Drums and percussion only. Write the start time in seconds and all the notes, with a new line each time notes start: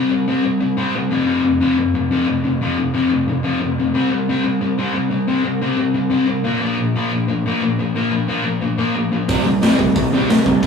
9.29 kick, open hi-hat
9.62 snare, open hi-hat
9.79 kick
9.96 kick, open hi-hat
10.30 snare, open hi-hat
10.46 kick
10.63 kick, open hi-hat